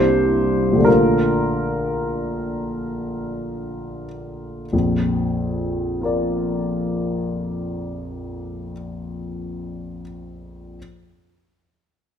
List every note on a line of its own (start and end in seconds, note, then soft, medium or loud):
0.00 0.76 C2 soft
0.00 0.77 C3 soft
0.00 0.79 A#3 soft
0.00 0.80 D4 soft
0.00 0.81 E4 soft
0.00 0.82 G4 soft
0.00 0.86 C5 medium
0.72 4.62 A#1 soft
0.72 4.63 D3 soft
0.78 4.64 A3 soft
0.78 4.66 D4 soft
0.85 4.03 F4 soft
0.85 4.07 A#4 medium
4.73 8.71 A#1 soft
4.73 8.71 F2 soft
6.01 9.99 F4 soft
6.01 10.02 A#4 soft
6.05 10.03 D5 soft